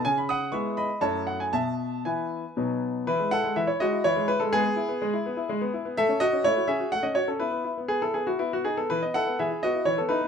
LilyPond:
<<
  \new Staff \with { instrumentName = "Grand piano" } { \time 3/4 \key e \major \tempo 4 = 124 gis''16 b''16 <fis'' dis'''>8 <e'' cis'''>8 <dis'' b''>8 <cis'' a''>8 fis''16 gis''16 | <e'' a''>4 <b' gis''>4. r8 | <e' b'>8 <a' fis''>8 e''16 cis''16 <fis' dis''>8 <e' cis''>8 b'16 a'16 | <b gis'>2. |
<a' e''>8 <fis' dis''>8 <e' cis''>8 <gis' e''>8 fis''16 dis''16 cis''16 a'16 | <e' b'>4 gis'16 a'16 gis'16 fis'16 e'16 fis'16 gis'16 a'16 | b'16 dis''16 <a' fis''>8 <gis' e''>8 <fis' dis''>8 cis''16 a'16 <dis' b'>8 | }
  \new Staff \with { instrumentName = "Grand piano" } { \time 3/4 \key e \major cis4 <gis b e'>4 <fis, fis a e'>4 | b,4 <e b e'>4 <b, fis b dis'>4 | e16 gis16 e'16 gis16 e16 e'16 gis16 e'16 e16 gis16 e'16 gis16 | gis16 b16 e'16 b16 gis16 e'16 b16 e'16 gis16 b16 e'16 b16 |
a16 cis'16 r16 cis'16 a16 fis'16 cis'16 fis'16 a16 cis'16 fis'16 cis'16 | b16 b16 e'16 b16 b16 e'16 b16 e'16 b16 b16 dis'16 b16 | e16 b16 e'16 b16 e16 e'16 b16 e'16 e16 b16 e'16 b16 | }
>>